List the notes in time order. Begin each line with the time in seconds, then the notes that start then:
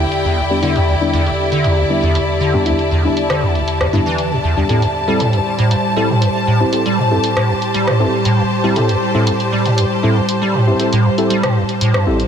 Already playing: E2 D3 E4 G4 D5 G5
0.12 closed hi-hat
0.25 E2
0.37 D2
0.50 G3 B3 D4 G4
0.63 D3 G3 B3 D4 E4, closed hi-hat
0.76 E2, closed hi-hat
0.88 D2
1.01 G3 B3 D4 E4
1.13 E2, closed hi-hat
1.26 D2, closed hi-hat
1.52 D3, closed hi-hat
1.64 E2, closed hi-hat
1.77 D2
1.84 A5
1.90 G3 B3 D4 E4
2.03 E2
2.15 D2, closed hi-hat
2.40 D3
2.54 E2 G3 B3 D4 G4
2.66 D2 G3 B3 D4 E4, closed hi-hat
2.79 closed hi-hat
2.91 E2
3.04 D2 G3 B3 D4 E4
3.17 closed hi-hat
3.30 D3, cross-stick, closed hi-hat
3.42 E2
3.55 D2, closed hi-hat
3.68 closed hi-hat
3.81 E2, cross-stick
3.93 G2 G3 B3 D4 E4
4.06 E3
4.18 closed hi-hat
4.32 B2
4.44 E2
4.57 E2 G3 B3 D4 G4
4.69 A2 G3 C4 E4 G4 A4 C5, closed hi-hat
4.82 G2, closed hi-hat
5.08 G3 C4 E4 G4 A4
5.20 A2, closed hi-hat
5.33 G2 C5, closed hi-hat
5.59 A2, closed hi-hat
5.71 G2, closed hi-hat
5.96 G3 C4 E4 G4 A4
6.09 A2
6.22 G2, closed hi-hat
6.47 A2
6.60 G2 C4 E4 G4 C5
6.73 C4 E4 G4 A4, closed hi-hat
6.86 G3, closed hi-hat
6.98 A2
7.11 G2 C4 E4 G4 A4
7.24 closed hi-hat
7.37 A2, cross-stick, closed hi-hat
7.49 G2
7.62 closed hi-hat
7.74 G3, closed hi-hat
7.87 A2, cross-stick
8.00 G2 C4 E4 G4 A4
8.25 A2, closed hi-hat
8.38 G2
8.64 G3 C4 E4 G4 C5
8.76 A2 C4 E4 G4 A4, closed hi-hat
8.89 G2, closed hi-hat
9.15 A2 C4 E4 G4 A4
9.27 G2, closed hi-hat
9.40 closed hi-hat
9.52 G3
9.65 A2, closed hi-hat
9.78 G2, closed hi-hat
10.03 A2 C4 E4 G4 A4
10.16 G2
10.29 closed hi-hat
10.42 G3
10.54 A2
10.67 G2 C4 E4 G4 C5
10.79 C4 E4 G4 A4, closed hi-hat
10.93 A2, closed hi-hat
11.05 G2
11.18 C4 E4 G4 A4, closed hi-hat
11.30 G3, closed hi-hat
11.43 A2, cross-stick, closed hi-hat
11.56 G2
11.69 closed hi-hat
11.81 A2, closed hi-hat
11.94 G2, cross-stick
12.07 A1 C4 E4 G4 A4
12.20 closed hi-hat